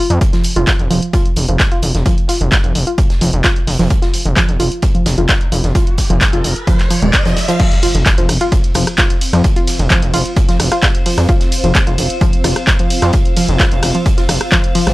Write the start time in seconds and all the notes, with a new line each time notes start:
0.10 F2, closed hi-hat
0.21 kick, closed hi-hat
0.33 F3, snare, closed hi-hat
0.44 closed hi-hat, open hi-hat
0.56 F1 F4, closed hi-hat
0.67 kick, snare, clap, closed hi-hat
0.79 F1, closed hi-hat
0.90 F1 F3, closed hi-hat, open hi-hat
1.02 closed hi-hat
1.13 F4, kick, closed hi-hat
1.26 closed hi-hat
1.36 F1, closed hi-hat, open hi-hat
1.48 F1 F3, closed hi-hat
1.60 kick, snare, clap, closed hi-hat
1.72 F4, closed hi-hat
1.82 F1, closed hi-hat, open hi-hat
1.95 F1, snare, closed hi-hat
2.06 F3, kick, closed hi-hat
2.18 closed hi-hat
2.28 F4, snare, closed hi-hat, open hi-hat
2.41 F1, closed hi-hat
2.52 kick, snare, clap, closed hi-hat
2.64 F1 F3, closed hi-hat
2.75 F1, closed hi-hat, open hi-hat
2.87 F4, closed hi-hat
2.98 kick, closed hi-hat
3.10 snare, closed hi-hat
3.21 F1 F3, closed hi-hat, open hi-hat
3.33 F1, closed hi-hat
3.44 F4, kick, snare, clap, closed hi-hat
3.56 closed hi-hat
3.67 F1, open hi-hat
3.79 F1 F3, snare, closed hi-hat
3.90 kick, closed hi-hat, riser
4.02 F4, snare, closed hi-hat
4.14 closed hi-hat, open hi-hat
4.25 F1, closed hi-hat
4.36 F3, kick, snare, clap, closed hi-hat
4.49 F1, closed hi-hat
4.60 F1 F4, closed hi-hat, open hi-hat
4.72 closed hi-hat
4.82 kick, closed hi-hat
4.95 F3, closed hi-hat
5.06 F1, snare, closed hi-hat, open hi-hat
5.18 F1 F4, closed hi-hat
5.29 kick, snare, clap, closed hi-hat
5.41 closed hi-hat
5.52 F1 F3, closed hi-hat, open hi-hat
5.64 F1, snare, closed hi-hat
5.75 F4, kick, closed hi-hat
5.87 closed hi-hat
5.98 kick, snare, closed hi-hat, open hi-hat
6.10 F1 F3, closed hi-hat
6.21 kick, snare, clap, closed hi-hat
6.33 F1 F4, closed hi-hat
6.44 F1, closed hi-hat, open hi-hat
6.56 closed hi-hat
6.67 F3, kick, closed hi-hat
6.79 snare, clap, closed hi-hat
6.90 F3, closed hi-hat, open hi-hat
7.02 D#1 G#3, closed hi-hat
7.13 kick, snare, clap, closed hi-hat
7.25 F1 F3, snare, closed hi-hat
7.37 snare, closed hi-hat, open hi-hat
7.48 F3, snare, closed hi-hat
7.60 F3 C4, kick, closed hi-hat, crash, impact
7.72 snare, closed hi-hat
7.83 F4, closed hi-hat, open hi-hat, ride
7.95 F1, closed hi-hat
8.06 C5, kick, snare, clap, closed hi-hat
8.12 F4
8.18 F1 F3, closed hi-hat
8.29 F1, cross-stick, closed hi-hat, open hi-hat, ride
8.41 F4, closed hi-hat
8.52 kick, closed hi-hat
8.64 closed hi-hat
8.74 F1 F3, cross-stick, closed hi-hat, open hi-hat, ride
8.87 cross-stick, closed hi-hat
8.97 F4 F5, kick, snare, clap, closed hi-hat
9.10 closed hi-hat
9.21 closed hi-hat, open hi-hat, ride
9.33 F2 F3, cross-stick, snare, closed hi-hat
9.44 kick, closed hi-hat
9.56 F4, closed hi-hat
9.67 snare, closed hi-hat, open hi-hat, ride
9.79 F1, closed hi-hat
9.90 F3, kick, snare, clap, closed hi-hat
10.02 F1, closed hi-hat
10.14 F1 F4, closed hi-hat, open hi-hat, ride
10.26 closed hi-hat
10.36 kick, closed hi-hat
10.49 F3, snare, closed hi-hat
10.60 F1, cross-stick, closed hi-hat, open hi-hat, ride
10.72 F4, cross-stick, closed hi-hat
10.82 kick, snare, clap, closed hi-hat
10.95 closed hi-hat
11.06 F3, open hi-hat, ride
11.18 F2, cross-stick, snare, closed hi-hat
11.29 F4, kick, closed hi-hat
11.40 snare, closed hi-hat
11.52 closed hi-hat, open hi-hat, ride
11.64 F1 F3, closed hi-hat
11.75 kick, snare, clap, closed hi-hat
11.87 F1 F4, closed hi-hat
11.98 F1, closed hi-hat, open hi-hat, ride
12.10 closed hi-hat
12.21 F3, kick, closed hi-hat
12.33 closed hi-hat
12.44 F1 F4, cross-stick, closed hi-hat, open hi-hat, ride
12.56 cross-stick, closed hi-hat
12.67 kick, snare, clap, closed hi-hat
12.79 F3, closed hi-hat
12.90 closed hi-hat, open hi-hat, ride
13.02 F2 F4, cross-stick, snare, closed hi-hat
13.13 kick, closed hi-hat
13.25 closed hi-hat
13.37 F3, snare, closed hi-hat, open hi-hat, ride
13.48 F1, closed hi-hat
13.60 F4, kick, snare, clap, closed hi-hat
13.72 F1, closed hi-hat
13.83 F1, cross-stick, closed hi-hat, open hi-hat, ride
13.95 F3, closed hi-hat
14.06 kick, closed hi-hat
14.18 F4, snare, closed hi-hat
14.29 F1, cross-stick, closed hi-hat, open hi-hat, ride
14.41 cross-stick, closed hi-hat
14.52 F3, kick, snare, clap, closed hi-hat
14.64 closed hi-hat
14.75 F3, open hi-hat, ride
14.87 G#1, cross-stick, snare, closed hi-hat